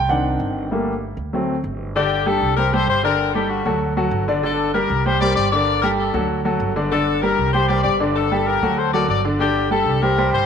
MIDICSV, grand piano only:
0, 0, Header, 1, 2, 480
1, 0, Start_track
1, 0, Key_signature, -2, "minor"
1, 0, Tempo, 310238
1, 1097, Time_signature, 4, 2, 24, 8
1, 16182, End_track
2, 0, Start_track
2, 0, Title_t, "Grand piano"
2, 0, Program_c, 0, 0
2, 138, Note_on_c, 0, 51, 61
2, 142, Note_on_c, 0, 60, 51
2, 146, Note_on_c, 0, 78, 85
2, 159, Note_on_c, 0, 62, 58
2, 1039, Note_off_c, 0, 78, 0
2, 1049, Note_off_c, 0, 51, 0
2, 1051, Note_off_c, 0, 60, 0
2, 1060, Note_off_c, 0, 62, 0
2, 1103, Note_on_c, 0, 55, 56
2, 1111, Note_on_c, 0, 57, 55
2, 1116, Note_on_c, 0, 58, 68
2, 1419, Note_off_c, 0, 55, 0
2, 1423, Note_off_c, 0, 57, 0
2, 1426, Note_off_c, 0, 58, 0
2, 2060, Note_on_c, 0, 54, 59
2, 2072, Note_on_c, 0, 57, 51
2, 2082, Note_on_c, 0, 60, 61
2, 2377, Note_off_c, 0, 54, 0
2, 2383, Note_off_c, 0, 57, 0
2, 2389, Note_off_c, 0, 60, 0
2, 3028, Note_on_c, 0, 50, 87
2, 3029, Note_on_c, 0, 62, 82
2, 3034, Note_on_c, 0, 74, 84
2, 3417, Note_off_c, 0, 50, 0
2, 3417, Note_off_c, 0, 62, 0
2, 3420, Note_off_c, 0, 74, 0
2, 3498, Note_on_c, 0, 55, 73
2, 3504, Note_on_c, 0, 67, 77
2, 3508, Note_on_c, 0, 69, 77
2, 3890, Note_off_c, 0, 55, 0
2, 3894, Note_off_c, 0, 67, 0
2, 3896, Note_off_c, 0, 69, 0
2, 3983, Note_on_c, 0, 55, 70
2, 3988, Note_on_c, 0, 67, 76
2, 3995, Note_on_c, 0, 72, 72
2, 4177, Note_off_c, 0, 55, 0
2, 4180, Note_off_c, 0, 67, 0
2, 4183, Note_off_c, 0, 72, 0
2, 4230, Note_on_c, 0, 55, 83
2, 4234, Note_on_c, 0, 67, 88
2, 4235, Note_on_c, 0, 72, 84
2, 4617, Note_off_c, 0, 55, 0
2, 4620, Note_off_c, 0, 67, 0
2, 4620, Note_off_c, 0, 72, 0
2, 4694, Note_on_c, 0, 50, 88
2, 4704, Note_on_c, 0, 62, 86
2, 4706, Note_on_c, 0, 74, 83
2, 5088, Note_off_c, 0, 50, 0
2, 5094, Note_off_c, 0, 62, 0
2, 5095, Note_off_c, 0, 74, 0
2, 5183, Note_on_c, 0, 55, 84
2, 5188, Note_on_c, 0, 67, 78
2, 5193, Note_on_c, 0, 69, 74
2, 5573, Note_off_c, 0, 55, 0
2, 5576, Note_off_c, 0, 67, 0
2, 5579, Note_off_c, 0, 69, 0
2, 5653, Note_on_c, 0, 54, 77
2, 5661, Note_on_c, 0, 66, 72
2, 5664, Note_on_c, 0, 69, 79
2, 6047, Note_off_c, 0, 54, 0
2, 6052, Note_off_c, 0, 66, 0
2, 6054, Note_off_c, 0, 69, 0
2, 6140, Note_on_c, 0, 54, 81
2, 6143, Note_on_c, 0, 66, 80
2, 6146, Note_on_c, 0, 69, 83
2, 6531, Note_off_c, 0, 54, 0
2, 6533, Note_off_c, 0, 66, 0
2, 6535, Note_off_c, 0, 69, 0
2, 6619, Note_on_c, 0, 50, 86
2, 6625, Note_on_c, 0, 62, 86
2, 6629, Note_on_c, 0, 74, 89
2, 6814, Note_off_c, 0, 50, 0
2, 6818, Note_off_c, 0, 62, 0
2, 6820, Note_off_c, 0, 74, 0
2, 6857, Note_on_c, 0, 50, 83
2, 6859, Note_on_c, 0, 62, 89
2, 6865, Note_on_c, 0, 74, 88
2, 7250, Note_off_c, 0, 50, 0
2, 7251, Note_off_c, 0, 62, 0
2, 7254, Note_off_c, 0, 74, 0
2, 7335, Note_on_c, 0, 55, 78
2, 7340, Note_on_c, 0, 67, 81
2, 7342, Note_on_c, 0, 70, 81
2, 7729, Note_off_c, 0, 55, 0
2, 7732, Note_off_c, 0, 67, 0
2, 7733, Note_off_c, 0, 70, 0
2, 7825, Note_on_c, 0, 55, 75
2, 7826, Note_on_c, 0, 67, 76
2, 7831, Note_on_c, 0, 72, 72
2, 8018, Note_off_c, 0, 55, 0
2, 8018, Note_off_c, 0, 67, 0
2, 8021, Note_off_c, 0, 72, 0
2, 8068, Note_on_c, 0, 55, 90
2, 8070, Note_on_c, 0, 67, 78
2, 8073, Note_on_c, 0, 72, 83
2, 8456, Note_off_c, 0, 55, 0
2, 8458, Note_off_c, 0, 67, 0
2, 8459, Note_off_c, 0, 72, 0
2, 8543, Note_on_c, 0, 50, 87
2, 8550, Note_on_c, 0, 62, 89
2, 8551, Note_on_c, 0, 74, 89
2, 8934, Note_off_c, 0, 50, 0
2, 8938, Note_off_c, 0, 62, 0
2, 8938, Note_off_c, 0, 74, 0
2, 9022, Note_on_c, 0, 55, 83
2, 9026, Note_on_c, 0, 67, 84
2, 9031, Note_on_c, 0, 69, 78
2, 9413, Note_off_c, 0, 55, 0
2, 9415, Note_off_c, 0, 67, 0
2, 9418, Note_off_c, 0, 69, 0
2, 9496, Note_on_c, 0, 54, 77
2, 9497, Note_on_c, 0, 66, 76
2, 9506, Note_on_c, 0, 69, 74
2, 9889, Note_off_c, 0, 54, 0
2, 9890, Note_off_c, 0, 66, 0
2, 9896, Note_off_c, 0, 69, 0
2, 9979, Note_on_c, 0, 54, 82
2, 9984, Note_on_c, 0, 66, 76
2, 9985, Note_on_c, 0, 69, 81
2, 10371, Note_off_c, 0, 54, 0
2, 10374, Note_off_c, 0, 66, 0
2, 10375, Note_off_c, 0, 69, 0
2, 10457, Note_on_c, 0, 50, 84
2, 10463, Note_on_c, 0, 62, 86
2, 10469, Note_on_c, 0, 74, 82
2, 10654, Note_off_c, 0, 50, 0
2, 10657, Note_off_c, 0, 62, 0
2, 10660, Note_off_c, 0, 74, 0
2, 10697, Note_on_c, 0, 50, 85
2, 10699, Note_on_c, 0, 62, 86
2, 10710, Note_on_c, 0, 74, 87
2, 11090, Note_off_c, 0, 50, 0
2, 11091, Note_off_c, 0, 62, 0
2, 11098, Note_off_c, 0, 74, 0
2, 11184, Note_on_c, 0, 55, 80
2, 11185, Note_on_c, 0, 67, 77
2, 11190, Note_on_c, 0, 70, 76
2, 11574, Note_off_c, 0, 55, 0
2, 11575, Note_off_c, 0, 67, 0
2, 11578, Note_off_c, 0, 70, 0
2, 11669, Note_on_c, 0, 55, 74
2, 11671, Note_on_c, 0, 67, 76
2, 11675, Note_on_c, 0, 72, 73
2, 11861, Note_off_c, 0, 55, 0
2, 11861, Note_off_c, 0, 67, 0
2, 11864, Note_off_c, 0, 72, 0
2, 11904, Note_on_c, 0, 55, 76
2, 11912, Note_on_c, 0, 67, 80
2, 11912, Note_on_c, 0, 72, 82
2, 12295, Note_off_c, 0, 55, 0
2, 12299, Note_off_c, 0, 67, 0
2, 12299, Note_off_c, 0, 72, 0
2, 12379, Note_on_c, 0, 50, 88
2, 12381, Note_on_c, 0, 62, 82
2, 12388, Note_on_c, 0, 74, 81
2, 12771, Note_off_c, 0, 50, 0
2, 12773, Note_off_c, 0, 62, 0
2, 12777, Note_off_c, 0, 74, 0
2, 12864, Note_on_c, 0, 55, 84
2, 12871, Note_on_c, 0, 67, 79
2, 12873, Note_on_c, 0, 69, 79
2, 13254, Note_off_c, 0, 55, 0
2, 13259, Note_off_c, 0, 67, 0
2, 13260, Note_off_c, 0, 69, 0
2, 13347, Note_on_c, 0, 54, 76
2, 13351, Note_on_c, 0, 66, 82
2, 13353, Note_on_c, 0, 69, 77
2, 13736, Note_off_c, 0, 54, 0
2, 13739, Note_off_c, 0, 66, 0
2, 13740, Note_off_c, 0, 69, 0
2, 13829, Note_on_c, 0, 54, 88
2, 13830, Note_on_c, 0, 66, 78
2, 13836, Note_on_c, 0, 69, 88
2, 14217, Note_off_c, 0, 54, 0
2, 14218, Note_off_c, 0, 66, 0
2, 14222, Note_off_c, 0, 69, 0
2, 14307, Note_on_c, 0, 50, 82
2, 14311, Note_on_c, 0, 62, 86
2, 14315, Note_on_c, 0, 74, 80
2, 14499, Note_off_c, 0, 50, 0
2, 14502, Note_off_c, 0, 62, 0
2, 14504, Note_off_c, 0, 74, 0
2, 14541, Note_on_c, 0, 50, 92
2, 14548, Note_on_c, 0, 62, 91
2, 14556, Note_on_c, 0, 74, 84
2, 14933, Note_off_c, 0, 50, 0
2, 14937, Note_off_c, 0, 62, 0
2, 14942, Note_off_c, 0, 74, 0
2, 15018, Note_on_c, 0, 55, 80
2, 15021, Note_on_c, 0, 67, 84
2, 15031, Note_on_c, 0, 69, 84
2, 15411, Note_off_c, 0, 55, 0
2, 15413, Note_off_c, 0, 67, 0
2, 15419, Note_off_c, 0, 69, 0
2, 15511, Note_on_c, 0, 55, 79
2, 15513, Note_on_c, 0, 67, 72
2, 15516, Note_on_c, 0, 72, 70
2, 15702, Note_off_c, 0, 55, 0
2, 15703, Note_off_c, 0, 67, 0
2, 15705, Note_off_c, 0, 72, 0
2, 15752, Note_on_c, 0, 55, 91
2, 15752, Note_on_c, 0, 67, 86
2, 15757, Note_on_c, 0, 72, 82
2, 16140, Note_off_c, 0, 55, 0
2, 16140, Note_off_c, 0, 67, 0
2, 16143, Note_off_c, 0, 72, 0
2, 16182, End_track
0, 0, End_of_file